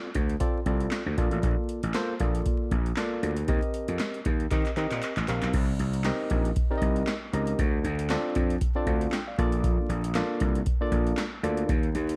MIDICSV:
0, 0, Header, 1, 4, 480
1, 0, Start_track
1, 0, Tempo, 512821
1, 1342, Time_signature, 4, 2, 24, 8
1, 11383, End_track
2, 0, Start_track
2, 0, Title_t, "Tine electric piano"
2, 0, Program_c, 0, 4
2, 374, Note_on_c, 0, 60, 93
2, 377, Note_on_c, 0, 65, 92
2, 381, Note_on_c, 0, 69, 85
2, 382, Note_on_c, 0, 74, 103
2, 549, Note_off_c, 0, 60, 0
2, 551, Note_off_c, 0, 65, 0
2, 553, Note_off_c, 0, 69, 0
2, 553, Note_off_c, 0, 74, 0
2, 618, Note_on_c, 0, 60, 77
2, 619, Note_on_c, 0, 65, 76
2, 624, Note_on_c, 0, 69, 82
2, 626, Note_on_c, 0, 74, 92
2, 953, Note_off_c, 0, 60, 0
2, 954, Note_off_c, 0, 65, 0
2, 956, Note_off_c, 0, 69, 0
2, 957, Note_off_c, 0, 74, 0
2, 1098, Note_on_c, 0, 58, 87
2, 1100, Note_on_c, 0, 65, 90
2, 1104, Note_on_c, 0, 69, 88
2, 1105, Note_on_c, 0, 74, 91
2, 1688, Note_off_c, 0, 58, 0
2, 1689, Note_off_c, 0, 65, 0
2, 1691, Note_off_c, 0, 69, 0
2, 1691, Note_off_c, 0, 74, 0
2, 1821, Note_on_c, 0, 58, 111
2, 1824, Note_on_c, 0, 65, 88
2, 1827, Note_on_c, 0, 69, 103
2, 1829, Note_on_c, 0, 72, 124
2, 1993, Note_off_c, 0, 58, 0
2, 1994, Note_off_c, 0, 65, 0
2, 1995, Note_off_c, 0, 69, 0
2, 1996, Note_off_c, 0, 72, 0
2, 2062, Note_on_c, 0, 58, 77
2, 2063, Note_on_c, 0, 65, 75
2, 2065, Note_on_c, 0, 69, 73
2, 2069, Note_on_c, 0, 74, 78
2, 2547, Note_off_c, 0, 58, 0
2, 2548, Note_off_c, 0, 65, 0
2, 2549, Note_off_c, 0, 69, 0
2, 2551, Note_off_c, 0, 74, 0
2, 2780, Note_on_c, 0, 58, 99
2, 2783, Note_on_c, 0, 65, 84
2, 2786, Note_on_c, 0, 69, 99
2, 2787, Note_on_c, 0, 74, 108
2, 3114, Note_off_c, 0, 58, 0
2, 3115, Note_off_c, 0, 65, 0
2, 3117, Note_off_c, 0, 69, 0
2, 3118, Note_off_c, 0, 74, 0
2, 3260, Note_on_c, 0, 60, 86
2, 3260, Note_on_c, 0, 67, 82
2, 3262, Note_on_c, 0, 70, 84
2, 3266, Note_on_c, 0, 75, 95
2, 3916, Note_off_c, 0, 60, 0
2, 3916, Note_off_c, 0, 67, 0
2, 3917, Note_off_c, 0, 70, 0
2, 3919, Note_off_c, 0, 75, 0
2, 4219, Note_on_c, 0, 60, 84
2, 4223, Note_on_c, 0, 67, 84
2, 4225, Note_on_c, 0, 70, 83
2, 4226, Note_on_c, 0, 75, 109
2, 4392, Note_off_c, 0, 60, 0
2, 4393, Note_off_c, 0, 67, 0
2, 4395, Note_off_c, 0, 70, 0
2, 4395, Note_off_c, 0, 75, 0
2, 4459, Note_on_c, 0, 60, 89
2, 4462, Note_on_c, 0, 67, 79
2, 4465, Note_on_c, 0, 70, 82
2, 4466, Note_on_c, 0, 75, 101
2, 4793, Note_off_c, 0, 60, 0
2, 4795, Note_off_c, 0, 67, 0
2, 4796, Note_off_c, 0, 70, 0
2, 4797, Note_off_c, 0, 75, 0
2, 4941, Note_on_c, 0, 60, 87
2, 4942, Note_on_c, 0, 67, 76
2, 4946, Note_on_c, 0, 70, 80
2, 4948, Note_on_c, 0, 77, 94
2, 5182, Note_off_c, 0, 60, 0
2, 5182, Note_off_c, 0, 67, 0
2, 5184, Note_off_c, 0, 70, 0
2, 5185, Note_off_c, 0, 77, 0
2, 5662, Note_on_c, 0, 60, 110
2, 5662, Note_on_c, 0, 63, 103
2, 5665, Note_on_c, 0, 67, 95
2, 5667, Note_on_c, 0, 70, 91
2, 5668, Note_on_c, 0, 75, 113
2, 6075, Note_off_c, 0, 60, 0
2, 6075, Note_off_c, 0, 63, 0
2, 6076, Note_off_c, 0, 67, 0
2, 6078, Note_off_c, 0, 70, 0
2, 6078, Note_off_c, 0, 75, 0
2, 6276, Note_on_c, 0, 60, 94
2, 6277, Note_on_c, 0, 63, 95
2, 6280, Note_on_c, 0, 67, 91
2, 6282, Note_on_c, 0, 70, 84
2, 6285, Note_on_c, 0, 74, 85
2, 6331, Note_off_c, 0, 74, 0
2, 6342, Note_on_c, 0, 75, 108
2, 6671, Note_off_c, 0, 60, 0
2, 6671, Note_off_c, 0, 63, 0
2, 6673, Note_off_c, 0, 67, 0
2, 6674, Note_off_c, 0, 70, 0
2, 6704, Note_off_c, 0, 75, 0
2, 6862, Note_on_c, 0, 60, 80
2, 6865, Note_on_c, 0, 63, 92
2, 6865, Note_on_c, 0, 67, 83
2, 6868, Note_on_c, 0, 70, 86
2, 6870, Note_on_c, 0, 75, 102
2, 7102, Note_off_c, 0, 60, 0
2, 7104, Note_off_c, 0, 63, 0
2, 7104, Note_off_c, 0, 67, 0
2, 7105, Note_off_c, 0, 70, 0
2, 7106, Note_off_c, 0, 75, 0
2, 7580, Note_on_c, 0, 60, 117
2, 7583, Note_on_c, 0, 62, 101
2, 7584, Note_on_c, 0, 65, 103
2, 7588, Note_on_c, 0, 69, 103
2, 7589, Note_on_c, 0, 74, 118
2, 7994, Note_off_c, 0, 60, 0
2, 7995, Note_off_c, 0, 62, 0
2, 7996, Note_off_c, 0, 65, 0
2, 7998, Note_off_c, 0, 69, 0
2, 7998, Note_off_c, 0, 74, 0
2, 8194, Note_on_c, 0, 60, 100
2, 8197, Note_on_c, 0, 62, 95
2, 8198, Note_on_c, 0, 65, 95
2, 8200, Note_on_c, 0, 69, 89
2, 8202, Note_on_c, 0, 74, 101
2, 8298, Note_off_c, 0, 74, 0
2, 8304, Note_on_c, 0, 77, 62
2, 8310, Note_on_c, 0, 74, 58
2, 8531, Note_off_c, 0, 77, 0
2, 8534, Note_off_c, 0, 74, 0
2, 8546, Note_on_c, 0, 79, 86
2, 8590, Note_off_c, 0, 60, 0
2, 8591, Note_off_c, 0, 62, 0
2, 8592, Note_off_c, 0, 65, 0
2, 8593, Note_off_c, 0, 69, 0
2, 8672, Note_off_c, 0, 79, 0
2, 8681, Note_on_c, 0, 77, 68
2, 8685, Note_on_c, 0, 74, 59
2, 8779, Note_off_c, 0, 74, 0
2, 8782, Note_on_c, 0, 58, 89
2, 8783, Note_on_c, 0, 62, 84
2, 8785, Note_on_c, 0, 65, 89
2, 8788, Note_on_c, 0, 69, 84
2, 8790, Note_on_c, 0, 74, 106
2, 8907, Note_off_c, 0, 77, 0
2, 9370, Note_off_c, 0, 58, 0
2, 9370, Note_off_c, 0, 62, 0
2, 9371, Note_off_c, 0, 65, 0
2, 9373, Note_off_c, 0, 69, 0
2, 9374, Note_off_c, 0, 74, 0
2, 9501, Note_on_c, 0, 58, 104
2, 9503, Note_on_c, 0, 62, 89
2, 9505, Note_on_c, 0, 65, 94
2, 9506, Note_on_c, 0, 69, 93
2, 9510, Note_on_c, 0, 74, 115
2, 9914, Note_off_c, 0, 58, 0
2, 9915, Note_off_c, 0, 62, 0
2, 9916, Note_off_c, 0, 65, 0
2, 9917, Note_off_c, 0, 69, 0
2, 9919, Note_off_c, 0, 74, 0
2, 10116, Note_on_c, 0, 58, 96
2, 10118, Note_on_c, 0, 62, 91
2, 10119, Note_on_c, 0, 65, 86
2, 10123, Note_on_c, 0, 69, 87
2, 10125, Note_on_c, 0, 74, 114
2, 10511, Note_off_c, 0, 58, 0
2, 10512, Note_off_c, 0, 62, 0
2, 10513, Note_off_c, 0, 65, 0
2, 10514, Note_off_c, 0, 69, 0
2, 10516, Note_off_c, 0, 74, 0
2, 10701, Note_on_c, 0, 58, 96
2, 10704, Note_on_c, 0, 62, 89
2, 10704, Note_on_c, 0, 65, 82
2, 10707, Note_on_c, 0, 69, 86
2, 10709, Note_on_c, 0, 74, 99
2, 10942, Note_off_c, 0, 58, 0
2, 10943, Note_off_c, 0, 62, 0
2, 10943, Note_off_c, 0, 65, 0
2, 10944, Note_off_c, 0, 69, 0
2, 10945, Note_off_c, 0, 74, 0
2, 11383, End_track
3, 0, Start_track
3, 0, Title_t, "Slap bass"
3, 0, Program_c, 1, 36
3, 141, Note_on_c, 1, 38, 98
3, 325, Note_off_c, 1, 38, 0
3, 617, Note_on_c, 1, 36, 87
3, 802, Note_off_c, 1, 36, 0
3, 993, Note_on_c, 1, 38, 95
3, 1075, Note_off_c, 1, 38, 0
3, 1102, Note_on_c, 1, 34, 98
3, 1205, Note_off_c, 1, 34, 0
3, 1234, Note_on_c, 1, 33, 96
3, 1316, Note_off_c, 1, 33, 0
3, 1339, Note_on_c, 1, 34, 121
3, 1443, Note_off_c, 1, 34, 0
3, 1716, Note_on_c, 1, 33, 89
3, 1797, Note_off_c, 1, 33, 0
3, 2061, Note_on_c, 1, 34, 83
3, 2245, Note_off_c, 1, 34, 0
3, 2539, Note_on_c, 1, 34, 87
3, 2724, Note_off_c, 1, 34, 0
3, 3021, Note_on_c, 1, 38, 93
3, 3205, Note_off_c, 1, 38, 0
3, 3259, Note_on_c, 1, 39, 117
3, 3363, Note_off_c, 1, 39, 0
3, 3635, Note_on_c, 1, 41, 87
3, 3716, Note_off_c, 1, 41, 0
3, 3984, Note_on_c, 1, 39, 97
3, 4167, Note_off_c, 1, 39, 0
3, 4223, Note_on_c, 1, 51, 87
3, 4325, Note_off_c, 1, 51, 0
3, 4461, Note_on_c, 1, 51, 111
3, 4564, Note_off_c, 1, 51, 0
3, 4599, Note_on_c, 1, 46, 76
3, 4679, Note_off_c, 1, 46, 0
3, 4836, Note_on_c, 1, 33, 90
3, 4917, Note_off_c, 1, 33, 0
3, 4944, Note_on_c, 1, 34, 93
3, 5046, Note_off_c, 1, 34, 0
3, 5075, Note_on_c, 1, 35, 99
3, 5157, Note_off_c, 1, 35, 0
3, 5183, Note_on_c, 1, 36, 114
3, 5366, Note_off_c, 1, 36, 0
3, 5424, Note_on_c, 1, 36, 96
3, 5710, Note_off_c, 1, 36, 0
3, 5903, Note_on_c, 1, 34, 94
3, 6086, Note_off_c, 1, 34, 0
3, 6380, Note_on_c, 1, 36, 100
3, 6564, Note_off_c, 1, 36, 0
3, 6862, Note_on_c, 1, 37, 83
3, 7045, Note_off_c, 1, 37, 0
3, 7102, Note_on_c, 1, 38, 114
3, 7286, Note_off_c, 1, 38, 0
3, 7339, Note_on_c, 1, 38, 109
3, 7627, Note_off_c, 1, 38, 0
3, 7823, Note_on_c, 1, 41, 93
3, 8006, Note_off_c, 1, 41, 0
3, 8299, Note_on_c, 1, 38, 96
3, 8484, Note_off_c, 1, 38, 0
3, 8784, Note_on_c, 1, 34, 98
3, 9150, Note_off_c, 1, 34, 0
3, 9258, Note_on_c, 1, 34, 95
3, 9546, Note_off_c, 1, 34, 0
3, 9743, Note_on_c, 1, 36, 94
3, 9926, Note_off_c, 1, 36, 0
3, 10219, Note_on_c, 1, 34, 104
3, 10404, Note_off_c, 1, 34, 0
3, 10699, Note_on_c, 1, 38, 88
3, 10884, Note_off_c, 1, 38, 0
3, 10942, Note_on_c, 1, 39, 122
3, 11126, Note_off_c, 1, 39, 0
3, 11183, Note_on_c, 1, 39, 105
3, 11383, Note_off_c, 1, 39, 0
3, 11383, End_track
4, 0, Start_track
4, 0, Title_t, "Drums"
4, 137, Note_on_c, 9, 42, 72
4, 143, Note_on_c, 9, 36, 83
4, 230, Note_off_c, 9, 42, 0
4, 236, Note_off_c, 9, 36, 0
4, 277, Note_on_c, 9, 42, 48
4, 371, Note_off_c, 9, 42, 0
4, 377, Note_on_c, 9, 42, 93
4, 381, Note_on_c, 9, 36, 102
4, 470, Note_off_c, 9, 42, 0
4, 475, Note_off_c, 9, 36, 0
4, 617, Note_on_c, 9, 36, 80
4, 617, Note_on_c, 9, 42, 52
4, 711, Note_off_c, 9, 36, 0
4, 711, Note_off_c, 9, 42, 0
4, 752, Note_on_c, 9, 42, 45
4, 846, Note_off_c, 9, 42, 0
4, 852, Note_on_c, 9, 39, 102
4, 857, Note_on_c, 9, 38, 117
4, 858, Note_on_c, 9, 42, 101
4, 945, Note_off_c, 9, 39, 0
4, 950, Note_off_c, 9, 38, 0
4, 952, Note_off_c, 9, 42, 0
4, 1102, Note_on_c, 9, 36, 89
4, 1102, Note_on_c, 9, 42, 80
4, 1195, Note_off_c, 9, 36, 0
4, 1195, Note_off_c, 9, 42, 0
4, 1228, Note_on_c, 9, 42, 49
4, 1322, Note_off_c, 9, 42, 0
4, 1339, Note_on_c, 9, 42, 97
4, 1340, Note_on_c, 9, 36, 106
4, 1433, Note_off_c, 9, 36, 0
4, 1433, Note_off_c, 9, 42, 0
4, 1581, Note_on_c, 9, 42, 72
4, 1675, Note_off_c, 9, 42, 0
4, 1714, Note_on_c, 9, 42, 58
4, 1808, Note_off_c, 9, 42, 0
4, 1817, Note_on_c, 9, 39, 100
4, 1819, Note_on_c, 9, 42, 94
4, 1822, Note_on_c, 9, 38, 121
4, 1911, Note_off_c, 9, 39, 0
4, 1913, Note_off_c, 9, 42, 0
4, 1916, Note_off_c, 9, 38, 0
4, 2056, Note_on_c, 9, 42, 75
4, 2062, Note_on_c, 9, 36, 91
4, 2150, Note_off_c, 9, 42, 0
4, 2156, Note_off_c, 9, 36, 0
4, 2197, Note_on_c, 9, 42, 53
4, 2290, Note_off_c, 9, 42, 0
4, 2299, Note_on_c, 9, 42, 92
4, 2302, Note_on_c, 9, 36, 104
4, 2393, Note_off_c, 9, 42, 0
4, 2395, Note_off_c, 9, 36, 0
4, 2539, Note_on_c, 9, 36, 84
4, 2539, Note_on_c, 9, 42, 55
4, 2633, Note_off_c, 9, 36, 0
4, 2633, Note_off_c, 9, 42, 0
4, 2676, Note_on_c, 9, 42, 42
4, 2770, Note_off_c, 9, 42, 0
4, 2774, Note_on_c, 9, 39, 94
4, 2779, Note_on_c, 9, 38, 122
4, 2781, Note_on_c, 9, 42, 104
4, 2868, Note_off_c, 9, 39, 0
4, 2873, Note_off_c, 9, 38, 0
4, 2874, Note_off_c, 9, 42, 0
4, 3024, Note_on_c, 9, 42, 80
4, 3117, Note_off_c, 9, 42, 0
4, 3150, Note_on_c, 9, 42, 56
4, 3243, Note_off_c, 9, 42, 0
4, 3257, Note_on_c, 9, 42, 91
4, 3260, Note_on_c, 9, 36, 124
4, 3351, Note_off_c, 9, 42, 0
4, 3354, Note_off_c, 9, 36, 0
4, 3392, Note_on_c, 9, 42, 41
4, 3486, Note_off_c, 9, 42, 0
4, 3500, Note_on_c, 9, 42, 73
4, 3593, Note_off_c, 9, 42, 0
4, 3633, Note_on_c, 9, 42, 64
4, 3726, Note_off_c, 9, 42, 0
4, 3737, Note_on_c, 9, 39, 102
4, 3739, Note_on_c, 9, 42, 90
4, 3741, Note_on_c, 9, 38, 123
4, 3830, Note_off_c, 9, 39, 0
4, 3832, Note_off_c, 9, 42, 0
4, 3835, Note_off_c, 9, 38, 0
4, 3877, Note_on_c, 9, 42, 36
4, 3971, Note_off_c, 9, 42, 0
4, 3978, Note_on_c, 9, 42, 69
4, 3984, Note_on_c, 9, 36, 91
4, 4071, Note_off_c, 9, 42, 0
4, 4078, Note_off_c, 9, 36, 0
4, 4118, Note_on_c, 9, 42, 46
4, 4211, Note_off_c, 9, 42, 0
4, 4221, Note_on_c, 9, 42, 96
4, 4224, Note_on_c, 9, 36, 104
4, 4225, Note_on_c, 9, 39, 60
4, 4315, Note_off_c, 9, 42, 0
4, 4317, Note_off_c, 9, 36, 0
4, 4319, Note_off_c, 9, 39, 0
4, 4357, Note_on_c, 9, 42, 36
4, 4359, Note_on_c, 9, 39, 56
4, 4450, Note_off_c, 9, 42, 0
4, 4453, Note_off_c, 9, 39, 0
4, 4461, Note_on_c, 9, 42, 51
4, 4465, Note_on_c, 9, 39, 64
4, 4555, Note_off_c, 9, 42, 0
4, 4558, Note_off_c, 9, 39, 0
4, 4597, Note_on_c, 9, 42, 46
4, 4600, Note_on_c, 9, 39, 75
4, 4691, Note_off_c, 9, 42, 0
4, 4693, Note_off_c, 9, 39, 0
4, 4704, Note_on_c, 9, 39, 98
4, 4704, Note_on_c, 9, 42, 100
4, 4797, Note_off_c, 9, 39, 0
4, 4797, Note_off_c, 9, 42, 0
4, 4836, Note_on_c, 9, 42, 35
4, 4839, Note_on_c, 9, 39, 78
4, 4930, Note_off_c, 9, 42, 0
4, 4933, Note_off_c, 9, 39, 0
4, 4944, Note_on_c, 9, 39, 97
4, 4945, Note_on_c, 9, 42, 88
4, 5037, Note_off_c, 9, 39, 0
4, 5039, Note_off_c, 9, 42, 0
4, 5072, Note_on_c, 9, 42, 46
4, 5079, Note_on_c, 9, 39, 95
4, 5166, Note_off_c, 9, 42, 0
4, 5173, Note_off_c, 9, 39, 0
4, 5181, Note_on_c, 9, 42, 104
4, 5181, Note_on_c, 9, 49, 93
4, 5183, Note_on_c, 9, 36, 117
4, 5275, Note_off_c, 9, 42, 0
4, 5275, Note_off_c, 9, 49, 0
4, 5276, Note_off_c, 9, 36, 0
4, 5423, Note_on_c, 9, 42, 73
4, 5516, Note_off_c, 9, 42, 0
4, 5555, Note_on_c, 9, 42, 70
4, 5648, Note_off_c, 9, 42, 0
4, 5655, Note_on_c, 9, 39, 101
4, 5657, Note_on_c, 9, 42, 101
4, 5660, Note_on_c, 9, 38, 126
4, 5748, Note_off_c, 9, 39, 0
4, 5750, Note_off_c, 9, 42, 0
4, 5753, Note_off_c, 9, 38, 0
4, 5895, Note_on_c, 9, 42, 72
4, 5904, Note_on_c, 9, 36, 89
4, 5988, Note_off_c, 9, 42, 0
4, 5998, Note_off_c, 9, 36, 0
4, 6037, Note_on_c, 9, 42, 50
4, 6131, Note_off_c, 9, 42, 0
4, 6139, Note_on_c, 9, 42, 95
4, 6143, Note_on_c, 9, 36, 122
4, 6233, Note_off_c, 9, 42, 0
4, 6237, Note_off_c, 9, 36, 0
4, 6380, Note_on_c, 9, 36, 84
4, 6380, Note_on_c, 9, 42, 63
4, 6474, Note_off_c, 9, 36, 0
4, 6474, Note_off_c, 9, 42, 0
4, 6514, Note_on_c, 9, 42, 47
4, 6608, Note_off_c, 9, 42, 0
4, 6617, Note_on_c, 9, 39, 103
4, 6622, Note_on_c, 9, 38, 127
4, 6623, Note_on_c, 9, 42, 103
4, 6710, Note_off_c, 9, 39, 0
4, 6715, Note_off_c, 9, 38, 0
4, 6717, Note_off_c, 9, 42, 0
4, 6865, Note_on_c, 9, 42, 93
4, 6959, Note_off_c, 9, 42, 0
4, 6992, Note_on_c, 9, 42, 57
4, 7086, Note_off_c, 9, 42, 0
4, 7103, Note_on_c, 9, 36, 109
4, 7103, Note_on_c, 9, 42, 97
4, 7196, Note_off_c, 9, 36, 0
4, 7197, Note_off_c, 9, 42, 0
4, 7344, Note_on_c, 9, 42, 77
4, 7438, Note_off_c, 9, 42, 0
4, 7477, Note_on_c, 9, 42, 70
4, 7571, Note_off_c, 9, 42, 0
4, 7578, Note_on_c, 9, 39, 102
4, 7580, Note_on_c, 9, 42, 95
4, 7583, Note_on_c, 9, 38, 125
4, 7672, Note_off_c, 9, 39, 0
4, 7674, Note_off_c, 9, 42, 0
4, 7677, Note_off_c, 9, 38, 0
4, 7817, Note_on_c, 9, 42, 74
4, 7823, Note_on_c, 9, 36, 88
4, 7910, Note_off_c, 9, 42, 0
4, 7917, Note_off_c, 9, 36, 0
4, 7959, Note_on_c, 9, 42, 57
4, 8052, Note_off_c, 9, 42, 0
4, 8060, Note_on_c, 9, 42, 103
4, 8063, Note_on_c, 9, 36, 113
4, 8154, Note_off_c, 9, 42, 0
4, 8156, Note_off_c, 9, 36, 0
4, 8299, Note_on_c, 9, 36, 80
4, 8300, Note_on_c, 9, 42, 54
4, 8393, Note_off_c, 9, 36, 0
4, 8394, Note_off_c, 9, 42, 0
4, 8436, Note_on_c, 9, 42, 50
4, 8529, Note_off_c, 9, 42, 0
4, 8538, Note_on_c, 9, 39, 102
4, 8543, Note_on_c, 9, 38, 121
4, 8545, Note_on_c, 9, 42, 104
4, 8632, Note_off_c, 9, 39, 0
4, 8637, Note_off_c, 9, 38, 0
4, 8639, Note_off_c, 9, 42, 0
4, 8784, Note_on_c, 9, 36, 95
4, 8787, Note_on_c, 9, 42, 81
4, 8878, Note_off_c, 9, 36, 0
4, 8880, Note_off_c, 9, 42, 0
4, 8914, Note_on_c, 9, 42, 58
4, 9007, Note_off_c, 9, 42, 0
4, 9022, Note_on_c, 9, 36, 109
4, 9023, Note_on_c, 9, 42, 90
4, 9116, Note_off_c, 9, 36, 0
4, 9117, Note_off_c, 9, 42, 0
4, 9264, Note_on_c, 9, 42, 69
4, 9358, Note_off_c, 9, 42, 0
4, 9397, Note_on_c, 9, 42, 66
4, 9491, Note_off_c, 9, 42, 0
4, 9498, Note_on_c, 9, 39, 102
4, 9500, Note_on_c, 9, 42, 97
4, 9502, Note_on_c, 9, 38, 126
4, 9591, Note_off_c, 9, 39, 0
4, 9593, Note_off_c, 9, 42, 0
4, 9596, Note_off_c, 9, 38, 0
4, 9736, Note_on_c, 9, 42, 72
4, 9744, Note_on_c, 9, 36, 86
4, 9829, Note_off_c, 9, 42, 0
4, 9837, Note_off_c, 9, 36, 0
4, 9878, Note_on_c, 9, 42, 49
4, 9972, Note_off_c, 9, 42, 0
4, 9979, Note_on_c, 9, 42, 103
4, 9983, Note_on_c, 9, 36, 115
4, 10073, Note_off_c, 9, 42, 0
4, 10077, Note_off_c, 9, 36, 0
4, 10220, Note_on_c, 9, 36, 87
4, 10221, Note_on_c, 9, 42, 58
4, 10314, Note_off_c, 9, 36, 0
4, 10315, Note_off_c, 9, 42, 0
4, 10359, Note_on_c, 9, 42, 43
4, 10452, Note_off_c, 9, 42, 0
4, 10457, Note_on_c, 9, 39, 107
4, 10462, Note_on_c, 9, 38, 127
4, 10464, Note_on_c, 9, 42, 100
4, 10551, Note_off_c, 9, 39, 0
4, 10556, Note_off_c, 9, 38, 0
4, 10557, Note_off_c, 9, 42, 0
4, 10706, Note_on_c, 9, 42, 88
4, 10800, Note_off_c, 9, 42, 0
4, 10832, Note_on_c, 9, 42, 56
4, 10926, Note_off_c, 9, 42, 0
4, 10942, Note_on_c, 9, 36, 117
4, 10942, Note_on_c, 9, 42, 97
4, 11036, Note_off_c, 9, 36, 0
4, 11036, Note_off_c, 9, 42, 0
4, 11074, Note_on_c, 9, 42, 38
4, 11168, Note_off_c, 9, 42, 0
4, 11183, Note_on_c, 9, 42, 71
4, 11277, Note_off_c, 9, 42, 0
4, 11317, Note_on_c, 9, 42, 67
4, 11383, Note_off_c, 9, 42, 0
4, 11383, End_track
0, 0, End_of_file